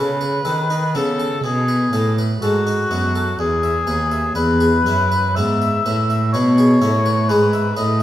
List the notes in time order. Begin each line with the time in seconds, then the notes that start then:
Already playing: C#3 A4 B4
0.21 B4
0.45 D#3 A4
0.70 D#4
0.95 C#3 B3 A4
1.20 A4
1.44 B2 G#4
1.68 B4
1.93 A2 A4
2.19 B4
2.41 G#2 F#4 A4
2.67 D#4
2.90 F#2 B3
3.16 A4
3.39 E2 G#4
3.63 E5
3.87 D#2 B4
4.11 E5
4.35 E2 B4
4.61 G#4
4.86 F#2 E4
5.12 B4
5.36 G#2 B3 E5
5.62 E5
5.86 A2 B4
6.10 E5
6.33 B2 B4 C#5
6.58 G#4
6.82 A2 E4
7.06 B4
7.29 G#2 G#3 B4
7.53 E5
7.76 A2 B4 D#5